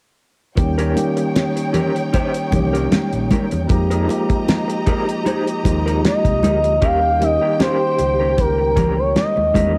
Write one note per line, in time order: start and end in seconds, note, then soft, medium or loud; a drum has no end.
0.56 0.93 D#2 medium
0.56 0.85 D#3 medium
0.56 0.86 G3 medium
0.56 0.86 A#3 medium
0.56 0.87 C#4 medium
0.56 3.66 D#4 medium
0.56 0.87 G4 medium
0.56 3.66 C#5 medium
0.56 3.66 G5 medium
0.56 muted clean electric guitar stroke soft
0.56 kick medium
0.56 closed hi-hat medium
0.56 muted conga soft
0.78 0.93 C#4 medium
0.78 0.92 G4 medium
0.78 0.92 A#4 medium
0.78 closed hi-hat soft
0.94 2.07 D#3 medium
0.94 2.08 G3 medium
0.94 2.08 A#3 medium
0.94 2.09 C#4 medium
0.94 muted clean electric guitar stroke soft
0.94 closed hi-hat medium
0.94 muted conga soft
0.98 2.09 G4 medium
1.17 muted clean electric guitar stroke soft
1.17 closed hi-hat soft
1.36 snare medium
1.36 closed hi-hat medium
1.36 high conga medium
1.56 muted clean electric guitar stroke soft
1.56 closed hi-hat medium
1.73 1.90 C#4 medium
1.73 1.90 G4 medium
1.73 1.91 A#4 medium
1.73 closed hi-hat medium
1.73 low conga medium
1.95 muted clean electric guitar stroke soft
1.95 closed hi-hat soft
2.13 2.29 C#4 medium
2.13 2.30 G4 medium
2.13 2.30 C5 medium
2.13 kick medium
2.13 closed hi-hat medium
2.13 muted conga soft
2.34 closed hi-hat medium
2.51 2.88 C2 medium
2.51 3.36 D#3 medium
2.51 3.36 G3 medium
2.51 3.37 A#3 medium
2.51 3.37 C#4 medium
2.51 3.38 G4 medium
2.51 muted clean electric guitar stroke soft
2.51 kick medium
2.51 closed hi-hat medium
2.51 muted conga soft
2.51 low conga medium
2.73 2.85 C#4 soft
2.73 2.84 G4 soft
2.73 2.84 A#4 medium
2.73 closed hi-hat soft
2.91 muted clean electric guitar stroke soft
2.91 muted fingered electric bass stroke soft
2.91 snare loud
2.91 closed hi-hat medium
2.91 high conga medium
3.13 3.29 A#1 medium
3.13 closed hi-hat soft
3.31 3.43 C#4 medium
3.31 3.44 G4 soft
3.31 3.44 A#4 medium
3.31 kick medium
3.31 closed hi-hat medium
3.31 high conga medium
3.51 3.68 E2 medium
3.51 muted clean electric guitar stroke soft
3.51 closed hi-hat soft
3.68 4.05 F2 medium
3.68 3.98 F3 medium
3.68 3.98 G#3 medium
3.68 3.98 A#3 medium
3.68 3.99 D#4 medium
3.68 6.78 G4 medium
3.68 3.99 G4 medium
3.68 6.78 D#5 medium
3.68 6.78 A#5 medium
3.68 muted clean electric guitar stroke soft
3.68 kick loud
3.68 closed hi-hat medium
3.68 muted conga soft
3.90 4.05 D#4 medium
3.90 4.05 G#4 medium
3.90 4.04 A#4 medium
3.90 closed hi-hat medium
4.07 5.20 F3 medium
4.07 5.20 G#3 medium
4.07 5.21 A#3 medium
4.07 5.21 D#4 medium
4.07 5.22 G4 medium
4.07 muted clean electric guitar stroke soft
4.07 closed hi-hat medium
4.07 muted conga soft
4.29 muted clean electric guitar stroke soft
4.29 kick medium
4.29 closed hi-hat soft
4.48 snare medium
4.48 closed hi-hat medium
4.48 high conga medium
4.68 muted clean electric guitar stroke soft
4.68 closed hi-hat medium
4.86 5.03 D#4 medium
4.86 5.03 G#4 medium
4.86 5.03 A#4 medium
4.86 kick medium
4.86 closed hi-hat medium
5.08 muted clean electric guitar stroke soft
5.08 closed hi-hat soft
5.26 5.42 D#4 medium
5.26 5.42 G#4 medium
5.26 5.42 C5 medium
5.26 closed hi-hat medium
5.26 muted conga soft
5.47 closed hi-hat medium
5.63 6.00 D#2 medium
5.63 6.48 F3 medium
5.63 6.48 G#3 medium
5.63 6.49 A#3 medium
5.63 6.49 D#4 medium
5.63 6.50 F4 medium
5.63 muted clean electric guitar stroke soft
5.63 kick medium
5.63 closed hi-hat medium
5.63 muted conga soft
5.86 5.97 D#4 soft
5.86 5.97 G#4 soft
5.86 5.97 A#4 medium
5.86 closed hi-hat medium
6.04 6.86 D#5 medium
6.04 muted clean electric guitar stroke soft
6.04 snare medium
6.04 closed hi-hat medium
6.04 high conga medium
6.25 6.41 C2 medium
6.25 kick medium
6.25 closed hi-hat soft
6.43 6.78 D2 medium
6.43 6.56 D#4 soft
6.43 6.56 G#4 soft
6.43 6.57 A#4 medium
6.43 closed hi-hat medium
6.43 high conga medium
6.64 muted clean electric guitar stroke soft
6.64 closed hi-hat soft
6.80 7.36 D#2 medium
6.80 7.10 D#3 medium
6.80 7.10 G3 medium
6.80 7.11 A#3 medium
6.80 6.98 C#4 medium
6.80 7.11 C#4 medium
6.80 6.98 G4 medium
6.80 9.51 G4 medium
6.80 7.12 G4 medium
6.80 6.99 A#4 medium
6.80 7.25 F5 medium
6.80 9.51 G5 medium
6.80 kick medium
6.80 closed hi-hat medium
6.80 muted conga soft
7.19 8.32 D#3 medium
7.19 8.32 G3 medium
7.19 8.33 A#3 medium
7.19 8.33 C#4 soft
7.19 8.34 D#4 medium
7.19 muted clean electric guitar stroke soft
7.19 closed hi-hat medium
7.19 muted conga soft
7.23 7.61 D#5 medium
7.42 7.53 C#4 soft
7.42 7.53 G4 soft
7.42 7.52 A#4 soft
7.60 7.76 C#4 medium
7.60 7.76 G4 medium
7.60 7.77 A#4 medium
7.60 8.41 C5 medium
7.60 snare medium
7.60 closed hi-hat medium
7.60 high conga medium
7.98 9.12 C#2 medium
7.98 muted clean electric guitar stroke soft
7.98 closed hi-hat medium
8.20 8.31 C#4 soft
8.20 8.31 G4 soft
8.20 8.31 A#4 soft
8.37 9.00 A#4 medium
8.37 muted clean electric guitar stroke soft
8.37 kick medium
8.37 closed hi-hat medium
8.37 muted conga soft
8.58 muted clean electric guitar stroke soft
8.76 8.93 C#4 medium
8.76 8.93 G4 medium
8.76 8.93 A#4 medium
8.76 kick medium
8.76 closed hi-hat medium
8.76 muted conga soft
8.76 low conga medium
8.97 9.16 C#5 medium
8.97 muted clean electric guitar stroke soft
9.16 9.78 D#5 medium
9.16 snare medium
9.16 closed hi-hat medium
9.16 high conga medium
9.36 9.53 D#2 medium
9.36 muted clean electric guitar stroke soft
9.36 high conga soft
9.53 9.78 E2 medium
9.53 9.78 D#3 medium
9.53 9.78 G3 medium
9.53 9.78 A#3 medium
9.53 9.71 C#4 medium
9.53 9.78 C#4 medium
9.53 9.78 D#4 medium
9.53 9.71 G4 medium
9.53 9.71 A#4 medium
9.53 kick medium
9.53 closed hi-hat medium
9.53 high conga medium